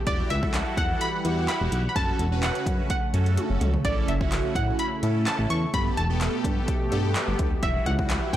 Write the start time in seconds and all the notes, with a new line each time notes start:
0.07 E1 E3 G3 E4 F#4 G4 D5 F#5, kick, closed hi-hat
0.30 C#2 E5, closed hi-hat
0.43 E4 F#4 A4, kick
0.54 snare, clap, closed hi-hat
0.77 E2 F#5, kick, closed hi-hat
1.01 B5, closed hi-hat
1.25 E2 E4 F#4 G4, closed hi-hat
1.48 B5, snare, clap, closed hi-hat
1.61 E1
1.72 B1, closed hi-hat
1.89 B5
1.96 F#1 C#3 A3 C#4 F#4 A4 A5, kick, closed hi-hat
2.19 E1, closed hi-hat
2.32 C#4 F#4 B4
2.43 F#5, snare, clap, closed hi-hat
2.55 closed hi-hat
2.66 F#2, kick, closed hi-hat
2.90 F#5, kick, closed hi-hat
3.14 F#2 C#4 F#4 A4, closed hi-hat
3.26 closed hi-hat
3.37 closed hi-hat, high tom
3.50 F#1
3.61 C#2, closed hi-hat, mid tom
3.74 floor tom
3.85 A1 C#4 E4 A4 D5, kick, closed hi-hat
4.08 F#1 E5, closed hi-hat
4.21 C#4 E4 F#4, kick
4.32 snare, clap, closed hi-hat
4.55 A2 F#5, kick, closed hi-hat
4.79 B5, closed hi-hat
5.03 A2 C#4 E4 A4, closed hi-hat
5.27 A5, snare, clap, closed hi-hat
5.39 A1
5.50 E2 C#6, closed hi-hat
5.73 G1 B2 A3 B3 G4 A4 B5, kick, closed hi-hat
5.97 E1 A5, closed hi-hat
6.10 B3 G4 A4
6.21 snare, clap, closed hi-hat
6.44 G2, kick, closed hi-hat
6.68 kick, closed hi-hat
6.92 G2 B3 G4 A4, closed hi-hat
7.16 snare, clap, closed hi-hat
7.28 G1
7.39 D2, kick, closed hi-hat
7.62 E1 E3 G3 E4 F#4 E5, kick, closed hi-hat
7.86 C#2 F#5, closed hi-hat
7.99 G3 E4 F#4, kick
8.10 snare, clap, closed hi-hat
8.33 E2 G5, kick, closed hi-hat